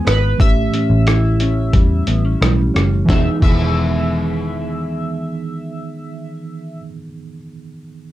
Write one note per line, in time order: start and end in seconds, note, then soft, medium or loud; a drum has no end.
0.00 0.46 G#3 medium
0.00 0.35 B3 medium
0.00 0.36 D#4 medium
0.00 0.47 D#4 medium
0.00 0.34 E4 medium
0.00 0.37 G#4 medium
0.05 0.33 G#1 medium
0.05 0.45 B3 medium
0.05 0.37 B4 medium
0.05 cross-stick medium
0.05 closed hi-hat soft
0.38 0.67 A1 loud
0.38 3.09 A2 medium
0.38 2.37 E3 medium
0.38 2.37 A3 medium
0.38 2.38 C#4 medium
0.38 2.38 E5 medium
0.38 kick loud
0.38 closed hi-hat medium
0.43 2.39 G4 medium
0.73 1.40 C#4 medium
0.73 closed hi-hat soft
0.90 1.70 A1 medium
1.07 3.13 E4 medium
1.07 cross-stick medium
1.07 closed hi-hat medium
1.40 2.08 C#4 medium
1.40 closed hi-hat soft
1.73 2.01 E2 medium
1.73 2.40 G3 medium
1.73 kick medium
1.73 closed hi-hat medium
2.07 2.35 A1 medium
2.07 2.25 B3 medium
2.07 closed hi-hat medium
2.25 2.73 C#4 soft
2.41 2.68 B1 medium
2.41 3.04 E3 medium
2.41 3.09 G3 medium
2.41 3.09 A3 soft
2.41 3.10 C#4 soft
2.41 3.10 E4 medium
2.41 cross-stick medium
2.41 closed hi-hat medium
2.74 3.03 F#1 medium
2.74 3.12 C#4 soft
2.74 cross-stick medium
2.74 closed hi-hat soft
3.05 3.25 E3 medium
3.05 3.39 E3 medium
3.05 3.27 B3 medium
3.05 kick medium
3.09 3.28 E1 medium
3.09 3.42 G#3 medium
3.09 3.45 B3 medium
3.09 3.29 D#4 medium
3.09 3.28 E5 medium
3.09 snare medium
3.14 3.43 D#4 medium
3.14 3.31 G#4 medium
3.38 6.72 E3 medium
3.38 6.90 E3 medium
3.38 6.75 B3 medium
3.42 6.77 E1 medium
3.42 6.79 D#3 medium
3.42 6.93 G#3 medium
3.42 6.95 B3 medium
3.42 6.77 E5 medium
3.42 kick medium
3.42 crash medium
3.48 6.82 G#4 medium